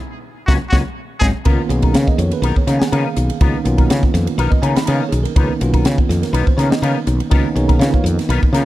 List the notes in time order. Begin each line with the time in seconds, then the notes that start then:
0.46 C#2 F#3 A#3 C#4 D#4 F#4, kick, snare
0.69 C#2 F#3 A#3 C#4 D#4 F#4, kick, snare
1.20 G#1 F#3 G#3 C#4 D#4 F#4 G#4, kick, snare
1.45 C#2 D#3 F3 A#3 B3 C#4 D#4 F4 A#4, kick, ride
1.69 B1 D#3 A#3 B3 C#4 G#4, muted clean electric guitar stroke, hi-hat pedal, ride
1.82 B3 D#4 A#4, kick, ride
1.94 C#3 F5, muted clean electric guitar stroke, snare, ride
2.07 D#5, muted clean electric guitar stroke, muted fretless electric bass stroke, kick
2.18 F2 C#5, hi-hat pedal, ride
2.31 B4, muted clean electric guitar stroke, ride
2.42 B1 F3 B3 D#4 A#4, ride
2.56 C#5, muted fretless electric bass stroke, muted clean electric guitar stroke, kick
2.67 C#3 D#3 F3 A#3 B3 C#4 D#4 G#4 A#4 F5, snare, hi-hat pedal, ride
2.79 G#5, muted clean electric guitar stroke, muted fretless electric bass stroke, snare
2.88 F#5
2.92 C#3 F3 B3 D#4 A#4 F5, ride
3.16 B1, muted clean electric guitar stroke, hi-hat pedal, ride
3.29 muted clean electric guitar stroke, ride
3.41 C#2 D#3 F3 A#3 B3 C#4 D#4 A#4, kick, ride
3.64 B1 D#3 A#3 B3 C#4 F4, muted clean electric guitar stroke, hi-hat pedal, ride
3.77 B3 D#4 A#4, kick, ride
3.89 C#3, muted clean electric guitar stroke, snare, ride
4.03 muted clean electric guitar stroke, muted fretless electric bass stroke, kick
4.14 F2, snare, hi-hat pedal, ride
4.27 muted clean electric guitar stroke, ride
4.38 B1 F3 B3 D#4 A#4 B4, ride
4.51 D#5, muted clean electric guitar stroke, muted fretless electric bass stroke, kick
4.62 C#3 D#3 F3 A#3 B3 C#4 D#4 A#4 G#5, hi-hat pedal, ride
4.76 B5, muted fretless electric bass stroke, muted clean electric guitar stroke, snare, ride
4.86 C#3 F3 B3 D#4 A#4 A#5, ride
4.94 F5
5.03 C#5
5.09 B1 G#4, muted clean electric guitar stroke, hi-hat pedal, ride
5.23 A#4, muted clean electric guitar stroke, ride
5.36 C#2 D#3 F3 A#3 B3 C#4 D#4 A#4 B4, kick, ride
5.60 B1 D#3 A#3 B3 C#4 F4, muted clean electric guitar stroke, hi-hat pedal, ride
5.73 B3 D#4 A#4, kick, ride
5.85 C#3, muted clean electric guitar stroke, snare, ride
5.98 muted fretless electric bass stroke, muted clean electric guitar stroke, kick
6.09 F2, snare, hi-hat pedal, ride
6.22 A#4, muted clean electric guitar stroke, snare, ride
6.33 B1 F3 B3 D#4 A#4 B4, ride
6.46 C5, muted clean electric guitar stroke, kick
6.57 C#3 D#3 F3 A#3 B3 C#4 D#4 A#4 C#5, snare, hi-hat pedal, ride
6.70 D#5, muted clean electric guitar stroke, muted fretless electric bass stroke, snare
6.82 C#3 F3 B3 D#4 A#4 F5, ride
7.06 B1, muted clean electric guitar stroke, hi-hat pedal, ride
7.20 muted clean electric guitar stroke, ride
7.30 C#2 D#3 F3 A#3 B3 C#4 D#4 A#4, kick, ride
7.55 B1 D#3 A#3 B3 C#4 D#4 G#4 A#4 C#5, muted clean electric guitar stroke, hi-hat pedal, ride
7.68 B3 D#4 A#4, kick, ride
7.79 C#3 F4 B4 C#5 F5, muted clean electric guitar stroke, snare, ride
7.93 muted clean electric guitar stroke, muted fretless electric bass stroke, kick
8.04 F2, hi-hat pedal, ride
8.17 muted clean electric guitar stroke, snare, ride
8.29 B1 F3 B3 D#4 A#4, ride
8.41 muted clean electric guitar stroke, muted fretless electric bass stroke, kick
8.53 C#3 D#3 F3 A#3 B3 C#4 D#4 F4 A#4, snare, hi-hat pedal, ride